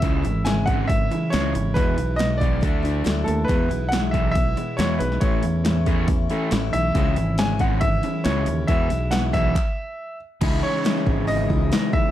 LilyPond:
<<
  \new Staff \with { instrumentName = "Grand piano" } { \time 4/4 \key cis \minor \tempo 4 = 138 e''4 gis''8 fis''8 e''4 cis''4 | b'4 dis''8 d''2 a'8 | b'4 fis''8 e''8 e''4 cis''8 b'8 | cis''2 r4. e''8~ |
e''4 gis''8 fis''8 e''4 cis''4 | e''4 fis''8 e''2 r8 | r8 cis''4. dis''4. e''8 | }
  \new Staff \with { instrumentName = "Steel-string acoustic guitar" } { \time 4/4 \key cis \minor <cis e gis cis' e'>8 <gis cis' e'>8 <cis e gis cis' e'>8 <gis e'>8 <e gis cis' e'>8 <gis cis' e'>8 <cis e gis cis' e'>8 <gis cis' e'>8 | <e, b, e gis b e'>8 <e gis b e'>8 <e, b, e gis b e'>8 <e gis b e'>8 <fis a d' e'>8 <a d' e'>8 <d fis a d' e'>8 <a d' e'>8 | <e, b, e gis b e'>8 <e gis b e'>8 <e, b, e gis b e'>8 <e gis b e'>8 <e gis b e'>8 <e gis b e'>8 <e, b, e gis b e'>8 <e gis b e'>8 | <a, e a cis' e'>8 <a cis' e'>8 <a, e a cis' e'>8 <a cis' e'>8 <e a cis' e'>8 <a cis' e'>8 <a, e a cis' e'>8 <a cis' e'>8 |
<cis e gis cis' e'>8 <gis cis' e'>8 <cis e gis cis' e'>8 <gis cis' e'>8 <e gis cis' e'>8 <gis cis' e'>8 <cis e gis cis' e'>8 <gis cis' e'>8 | <e, b, e gis b e'>8 <e gis b e'>8 <e, b, e gis b e'>8 <e gis b e'>8 r2 | <cis e gis dis' e'>8 <gis dis' e'>8 <cis e gis dis' e'>8 <gis dis' e'>8 <e gis dis' e'>8 <gis dis' e'>8 <cis e gis dis' e'>8 <gis dis' e'>8 | }
  \new Staff \with { instrumentName = "Overdriven electric guitar" } { \clef bass \time 4/4 \key cis \minor <cis e gis>8 <cis e>8 <cis e>8 <cis e gis>8 <cis e>8 <cis e>8 <cis e gis>8 <cis e>8 | <e, b, e>8 <e, b,>8 <e, b,>8 <e, b, e>8 <d a d'>8 <d a d'>8 <d a>8 <d a>8 | <e, b, e>8 <e, b,>8 <e, b,>8 <e, b, e>8 <e, b,>8 <e, b,>8 <e, b, e>8 <e, b,>8 | <a, e a>8 <a, e>8 <a, e>8 <a, e a>8 <a, e>8 <a, e a>8 <a, e>8 <a, e>8 |
<cis e gis>8 <cis e>8 <cis e>8 <cis e gis>8 <cis e>8 <cis e>8 <cis e gis>8 <cis e>8 | <e, b, e>8 <e, b,>8 <e, b,>8 <e, b, e>8 r2 | <cis e gis cis' e'>1 | }
  \new Staff \with { instrumentName = "Fingered electric bass" } { \clef bass \time 4/4 \key cis \minor cis,8 gis,,2 r8 cis,8 gis,,8 | e,8 b,,4. d,4 d,8 dis,8 | e,8 b,,2 r8 e,8 b,,8 | a,,8 e,2 r8 a,,8 b,,8 |
cis,8 gis,,2 r8 cis,8 dis,8 | e,8 b,,4. r2 | cis,8 r4 gis,,4 cis,8 r4 | }
  \new DrumStaff \with { instrumentName = "Drums" } \drummode { \time 4/4 <hho bd>8 hho8 <hho sn>8 <hho bd>8 <hho bd>8 hho8 <hho sn>8 hho8 | <hho bd>8 hho8 <hho sn>8 <hho bd>8 <hho bd>8 hho8 <hho sn>8 hho8 | <hho bd>8 hho8 <hho sn>8 <hho bd>8 <hho bd>8 hho8 <hho sn>8 hho16 sn16 | <hho bd>8 hho8 <hho sn>8 <hho bd>8 <hho bd>8 hho8 <hho sn>8 hho8 |
<hho bd>8 hho8 <hho sn>8 <hho bd>8 <hho bd>8 hho8 <hho sn>8 hho8 | <hho bd>8 hho8 <hho sn>8 <hho bd>8 <hc bd>4 r4 | <cymc hho bd>4 <hho sn>16 sn16 bd8 hho8 bd8 <hho sn>8 bd8 | }
>>